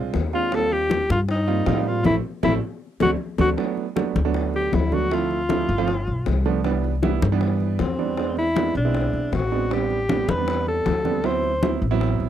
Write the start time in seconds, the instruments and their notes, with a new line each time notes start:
Already playing: upright bass C2, grand piano G#3 C4 D4 F4
0.14 upright bass D#2, high bongo, low bongo, high conga
0.33 grand piano G#3 C4 D4 F4, alto saxophone F4, high bongo
0.52 grand piano G3 A#3 C4 F4, alto saxophone A4, high bongo, high conga
0.71 alto saxophone G4, high bongo, high conga
0.90 high bongo, high conga
1.10 upright bass G2, alto saxophone F4, high conga
1.29 alto saxophone D#4, high bongo, high conga
1.47 grand piano G3 A#3 C4 F4, high bongo, high conga
1.66 upright bass A2, grand piano G3 A#3 C4 F4, high bongo, low bongo, high conga
1.76 grand piano G3 A#3 C4 F4
1.86 grand piano G3 A#3 C4 F4, alto saxophone F4, high bongo
2.04 upright bass A1, grand piano A3 C4 E4, alto saxophone E4, low bongo, high conga
2.43 upright bass A1, grand piano A3 C4 E4, alto saxophone E4, low bongo, high conga
3.00 upright bass D2, grand piano A3 C4 D4, alto saxophone F#4, low bongo, high conga
3.38 upright bass D2, grand piano A3 C4 D4, alto saxophone F#4, low bongo, high conga
3.57 grand piano F#3 A3 B3 D4, high bongo, high conga
3.77 high bongo, high conga
3.96 grand piano F#3 A3 B3 D4, high bongo, high conga
4.16 upright bass D2, high conga
4.25 grand piano F#3 A3 B3 D4
4.34 high bongo, high conga
4.54 alto saxophone G4, high bongo, high conga
4.73 upright bass D2, alto saxophone E4, high bongo, low bongo, high conga
4.92 grand piano F#3 A3 B3 D4, alto saxophone F#4, high bongo, high conga
5.11 grand piano F3 A3 C4 E4, alto saxophone F4, high bongo, high conga
5.31 high bongo, high conga
5.49 grand piano F3 A3 C4 E4, high bongo, high conga
5.69 upright bass G1, high conga
5.78 grand piano F3 A3 C4 F4
5.88 high bongo, high conga
6.07 upright bass B1, high conga
6.26 upright bass C2, high bongo, low bongo, high conga
6.45 grand piano F3 A3 B3 D4, high bongo
6.64 grand piano E3 G3 B3 D4, high bongo, high conga
6.84 high bongo, high conga
7.03 grand piano E3 G3 B3 E4, high bongo, high conga
7.22 upright bass G2, high conga
7.32 grand piano E3 G3 B3 D4
7.41 high bongo, high conga
7.60 high bongo, high conga
7.79 upright bass E2, alto saxophone C4, high bongo, low bongo, high conga
7.99 grand piano E3 G3 B3 D4, high bongo
8.17 grand piano G#3 B3 C4 D4, high bongo, high conga
8.37 alto saxophone E4, high bongo, high conga
8.56 grand piano G#3 B3 C4 D4, high bongo, high conga
8.75 upright bass B1, alto saxophone D4, high conga
8.85 grand piano G#3 B3 C4 E4
8.95 high bongo, high conga
9.13 upright bass B1, high conga
9.32 upright bass A1, alto saxophone F#4, high bongo, low bongo, high conga
9.52 grand piano G#3 B3 C4 D4, high bongo
9.71 grand piano G3 B3 C4 D4, alto saxophone G4, high bongo, high conga
9.90 high bongo, high conga
10.09 grand piano G3 B3 C4 D4, high bongo, high conga
10.28 upright bass E2, alto saxophone B4, high conga
10.38 grand piano G3 B3 C4 D4
10.48 high bongo, high conga
10.67 alto saxophone A4, high bongo, high conga
10.86 upright bass D2, high bongo, low bongo, high conga
11.05 grand piano G3 B3 C4 D4, high bongo, high conga
11.24 grand piano F#3 B3 C4 E4, alto saxophone C5, high bongo, high conga
11.43 high bongo, high conga
11.62 grand piano F#3 B3 C4 E4, high bongo, high conga
11.82 upright bass A1, high conga
11.91 grand piano F#3 B3 C4 E4
12.01 high bongo, high conga
12.20 upright bass A1, high conga